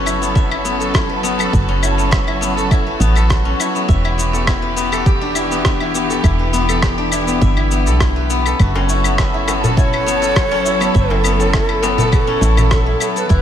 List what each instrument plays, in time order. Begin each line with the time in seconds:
Already playing: fm bass F#1, string section F#3 C#4 F#4 A4, guzheng B3 C#4 F#4 A4 B4
0.06 guzheng E4, cabasa, claves
0.22 guzheng B3, cabasa
0.35 guzheng E5, kick, cabasa
0.51 guzheng E4, claves
0.65 guzheng B3, cabasa
0.80 guzheng A4, cabasa
0.94 guzheng E4, kick, cross-stick, cabasa, claves
1.09 guzheng B4
1.23 guzheng B3, cabasa
1.39 guzheng A4, cabasa, claves
1.53 fm bass F#1, guzheng F#4, kick, cabasa
1.69 guzheng C#4
1.82 guzheng E4, cabasa, claves
1.98 guzheng B3, cabasa
2.11 guzheng E5, kick, cross-stick, cabasa
2.27 guzheng E4, claves
2.41 guzheng B3, cabasa
2.57 guzheng A4, cabasa
2.71 guzheng E4, kick, cabasa, claves
2.87 guzheng B4
3.00 fm bass A1, guzheng B3, cabasa
3.15 guzheng A4, cabasa, claves
3.29 guzheng F#4, kick, cross-stick, cabasa
3.45 guzheng C#4
3.60 guzheng E4, cabasa, claves
3.75 guzheng B3, cabasa
3.88 fm bass E1, string section E3 B3 G4, guzheng E5, kick, cabasa
4.04 guzheng E4, claves
4.18 guzheng B3, cabasa
4.33 guzheng A4, cabasa
4.47 guzheng E4, kick, cross-stick, cabasa, claves
4.62 guzheng B4
4.76 guzheng B3, cabasa
4.92 guzheng A4, cabasa, claves
5.06 guzheng G4, kick, cabasa
5.21 guzheng D4
5.35 guzheng E4, cabasa, claves
5.51 guzheng B3, cabasa
5.65 guzheng E5, kick, cross-stick, cabasa
5.80 guzheng E4, claves
5.94 guzheng B3, cabasa
6.10 guzheng A4, cabasa
6.24 fm bass E1, string section E4, guzheng E4, kick, cabasa, claves
6.39 guzheng B4
6.53 guzheng B3, cabasa
6.69 guzheng A4, cabasa, claves
6.82 guzheng G4, kick, cross-stick, cabasa
6.98 guzheng D4
7.12 guzheng E4, cabasa, claves
7.28 guzheng B3, cabasa
7.41 fm bass G1, guzheng E5, kick, cabasa
7.57 guzheng E4, claves
7.71 guzheng B3, cabasa
7.86 fm bass B1, guzheng A4, cabasa
8.00 guzheng E4, kick, cross-stick, cabasa, claves
8.16 guzheng B4
8.30 guzheng B3, cabasa
8.46 guzheng A4, cabasa, claves
8.59 fm bass F#1, string section F#3 C#4 F#4 A4, guzheng F#4, kick, cabasa, claves
8.76 guzheng C#4, darbuka tek
8.89 guzheng E4, cabasa
9.04 guzheng B3, cabasa, claves
9.18 guzheng E5, kick, cross-stick, darbuka tek, cabasa
9.34 guzheng E4
9.48 guzheng B3, darbuka tek, cabasa, claves
9.64 guzheng A4, darbuka dum, cabasa
9.77 guzheng E4, native american-style wooden flute C#5, kick, cabasa
9.93 guzheng B4, claves
10.06 guzheng B3, cabasa
10.22 guzheng A4, cabasa
10.36 guzheng F#4, kick, cross-stick, cabasa, claves
10.51 guzheng C#4, darbuka ka, darbuka tek
10.65 guzheng E4, darbuka ka, cabasa
10.80 guzheng B3, cabasa, claves
10.94 fm bass F#1, string section E4, native american-style wooden flute A4, guzheng E5, kick, cabasa
11.10 guzheng E4, darbuka tek
11.24 guzheng B3, cabasa, claves
11.40 guzheng A4, darbuka ka, cabasa
11.53 guzheng E4, kick, cross-stick, darbuka tek, cabasa
11.69 guzheng B4, claves
11.83 guzheng B3, darbuka tek, cabasa
11.98 guzheng A4, darbuka dum, cabasa
12.12 guzheng F#4, native american-style wooden flute A4, kick, cabasa, claves
12.27 guzheng C#4
12.41 fm bass A1, guzheng E4, darbuka ka, cabasa
12.57 guzheng B3, darbuka ka, darbuka dum, cabasa, claves
12.71 guzheng E5, kick, cross-stick, cabasa
12.86 guzheng E4
13.00 guzheng B3, native american-style wooden flute A4, cabasa, claves
13.16 guzheng A4, native american-style wooden flute B4, cabasa
13.29 fm bass E1, string section E3 B3 G4 F#5, guzheng E4, native american-style wooden flute B4, kick, cabasa